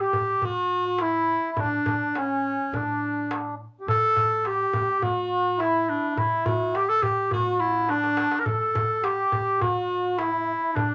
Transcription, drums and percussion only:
0.13 darbuka dum
0.42 darbuka dum
0.98 darbuka tek
1.57 darbuka dum
1.71 darbuka ka
1.86 darbuka dum
2.15 darbuka tek
2.74 darbuka dum
3.31 darbuka tek
3.88 darbuka dum
4.16 darbuka dum
4.45 darbuka tek
4.74 darbuka dum
5.02 darbuka dum
5.60 darbuka tek
6.18 darbuka dum
6.46 darbuka dum
6.75 darbuka tek
7.03 darbuka dum
7.17 darbuka ka
7.31 darbuka dum
7.60 darbuka ka
7.89 darbuka tek
8.04 darbuka ka
8.17 darbuka tek
8.31 darbuka ka
8.46 darbuka dum
8.60 darbuka ka
8.75 darbuka dum
9.04 darbuka tek
9.32 darbuka dum
9.61 darbuka dum
10.19 darbuka tek
10.76 darbuka dum
10.91 darbuka ka

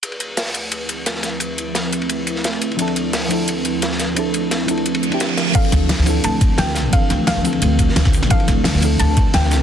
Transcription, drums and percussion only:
0.03 closed hi-hat, ride
0.12 ride
0.20 closed hi-hat, ride
0.37 snare, closed hi-hat, open hi-hat
0.46 snare
0.54 closed hi-hat, ride
0.72 closed hi-hat, ride
0.89 closed hi-hat, ride
1.06 snare, closed hi-hat, ride
1.15 snare
1.23 snare, closed hi-hat, ride
1.40 closed hi-hat, ride
1.58 closed hi-hat, ride
1.75 snare, closed hi-hat, ride
1.93 closed hi-hat, ride
2.02 ride
2.09 closed hi-hat, ride
2.27 closed hi-hat, ride
2.36 snare
2.44 snare, closed hi-hat, ride
2.53 ride
2.62 closed hi-hat, ride
2.71 ride
2.79 closed hi-hat, ride
2.88 ride
2.96 closed hi-hat, ride
3.13 snare, closed hi-hat, open hi-hat
3.23 snare
3.31 closed hi-hat, ride
3.48 closed hi-hat, ride
3.65 closed hi-hat, ride
3.82 snare, closed hi-hat, ride
3.92 snare
3.99 snare, closed hi-hat, ride
4.16 closed hi-hat, ride
4.34 closed hi-hat, ride
4.51 snare, closed hi-hat, ride
4.68 closed hi-hat, ride
4.77 ride
4.86 closed hi-hat, ride
4.95 ride
5.03 closed hi-hat, ride
5.12 ride
5.20 snare, closed hi-hat, ride
5.29 ride
5.37 snare, closed hi-hat, ride
5.47 snare
5.55 kick, closed hi-hat, crash, ride
5.65 ride
5.72 kick, snare, closed hi-hat, ride
5.89 snare, closed hi-hat, open hi-hat
5.98 snare
6.06 open hi-hat, ride
6.24 closed hi-hat, ride
6.41 kick, closed hi-hat, ride
6.58 snare, closed hi-hat, ride
6.67 snare
6.75 snare, open hi-hat, ride
6.93 kick, closed hi-hat, ride
7.10 snare, closed hi-hat, ride
7.27 snare, closed hi-hat, ride
7.45 open hi-hat, ride
7.53 ride
7.62 closed hi-hat, ride
7.79 kick, closed hi-hat, ride
7.89 snare
7.96 snare, closed hi-hat, ride
8.05 kick, snare, ride
8.13 open hi-hat, ride
8.23 snare, ride
8.30 kick, closed hi-hat, ride
8.40 ride
8.48 kick, snare, closed hi-hat, ride
8.64 snare, closed hi-hat, open hi-hat
8.74 snare
8.82 open hi-hat, ride
8.99 closed hi-hat, ride
9.17 kick, closed hi-hat, ride
9.34 snare, closed hi-hat, ride
9.44 snare
9.51 snare, open hi-hat, ride

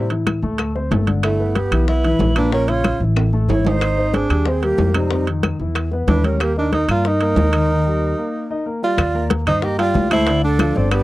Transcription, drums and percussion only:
0.10 high bongo, high conga, high timbale
0.27 high bongo, high conga, high timbale, low timbale, claves
0.43 high conga
0.58 high bongo, high conga, high timbale, claves
0.76 high bongo, high conga
0.91 high bongo, low bongo, high conga, high timbale, low timbale
1.07 high bongo, high conga, high timbale
1.23 high bongo, high timbale, claves
1.40 high bongo, high conga
1.55 high bongo, high conga, high timbale, low timbale
1.72 high timbale, claves
1.88 high bongo, high conga
2.04 high bongo, high conga, high timbale
2.19 high bongo, low bongo, high conga, low timbale
2.36 high bongo, high timbale, claves
2.52 high bongo, high conga
2.68 high bongo, high conga, high timbale
2.84 high bongo, high conga, high timbale, low timbale, claves
3.01 high conga
3.16 high bongo, high conga, high timbale, claves
3.33 high bongo, high conga
3.49 high bongo, low bongo, high conga, low timbale
3.65 high bongo, high conga, low timbale
3.81 high bongo, high conga, high timbale, claves
3.97 high bongo, high conga
4.14 high bongo, high conga, high timbale, low timbale
4.30 high timbale, claves
4.46 high bongo, high conga
4.62 high bongo, high conga, high timbale
4.78 high bongo, low bongo, high conga, low timbale
4.94 high bongo, high conga, high timbale, claves
5.11 high bongo, high conga
5.27 high bongo, high conga, high timbale
5.43 high bongo, high conga, high timbale, low timbale, claves
5.60 high conga
5.75 high bongo, high conga, high timbale, claves
5.91 high bongo, high conga
6.08 high bongo, low bongo, high conga, high timbale, low timbale
6.24 high bongo, high conga, high timbale
6.40 high bongo, high conga, high timbale, claves
6.56 high bongo, high conga
6.72 high bongo, high conga, high timbale, low timbale
6.89 high timbale, claves
7.05 high bongo, high conga
7.21 high bongo, high conga, high timbale
7.36 high bongo, low bongo, high conga, low timbale
7.53 high bongo, high timbale, claves
8.98 high bongo, high conga, high timbale, claves
9.15 high conga
9.30 high bongo, high conga, high timbale
9.47 high bongo, low conga, high timbale, claves
9.62 high bongo, high conga
9.79 high bongo, high conga, high timbale
9.94 high bongo, low bongo, high conga, low timbale
10.11 high bongo, high conga, high timbale, claves
10.27 high bongo, high conga, high timbale
10.43 high conga
10.59 high bongo, high conga, high timbale, claves
10.75 high bongo, high conga
10.91 high bongo, high conga, high timbale, claves

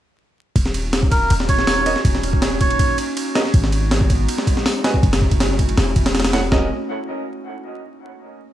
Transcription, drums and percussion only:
0.56 kick, ride
0.66 snare
0.74 ride
0.93 snare, ride
1.03 kick
1.12 kick, ride
1.30 ride
1.40 snare
1.49 kick, ride
1.59 snare
1.67 snare, open hi-hat
1.86 ride
1.96 snare
2.05 kick, ride
2.15 snare
2.23 ride
2.33 kick
2.42 snare, ride
2.61 kick, ride
2.71 ride
2.79 kick, ride
2.98 ride
3.17 ride
3.35 snare, ride
3.45 snare
3.54 kick, ride
3.64 snare
3.72 ride
3.91 snare, ride
4.01 kick
4.10 kick, ride
4.29 ride
4.38 snare
4.47 kick, ride
4.57 snare
4.66 snare, open hi-hat
4.84 snare, ride
4.94 kick
5.03 kick, ride
5.13 snare, ride
5.22 kick
5.31 kick, ride
5.40 snare, ride
5.59 kick, ride
5.69 ride
5.77 snare, ride
5.96 kick, ride
6.06 snare, ride
6.15 snare, ride
6.20 snare, ride
6.25 snare, ride
6.33 snare, ride
6.52 kick, snare

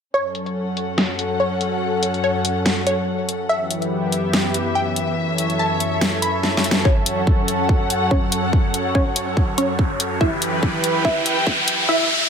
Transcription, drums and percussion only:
0.35 closed hi-hat
0.46 closed hi-hat
0.77 closed hi-hat
0.98 snare
1.19 closed hi-hat
1.61 closed hi-hat
2.03 closed hi-hat
2.14 closed hi-hat
2.45 closed hi-hat
2.66 snare
2.87 closed hi-hat
3.29 closed hi-hat
3.71 closed hi-hat
3.82 closed hi-hat
4.12 closed hi-hat
4.33 snare
4.54 closed hi-hat
4.96 closed hi-hat
5.38 closed hi-hat
5.50 closed hi-hat
5.80 closed hi-hat
6.01 snare
6.22 closed hi-hat
6.43 snare
6.57 snare
6.64 closed hi-hat
6.71 snare
6.85 kick
7.06 closed hi-hat
7.27 kick
7.48 closed hi-hat
7.69 kick
7.90 closed hi-hat
8.11 kick
8.32 closed hi-hat
8.53 kick
8.74 closed hi-hat
8.95 kick
9.16 closed hi-hat
9.37 kick
9.58 closed hi-hat
9.79 kick
10.00 closed hi-hat
10.21 kick
10.42 closed hi-hat
10.63 kick
10.84 closed hi-hat
11.05 kick
11.26 closed hi-hat
11.47 kick
11.68 closed hi-hat

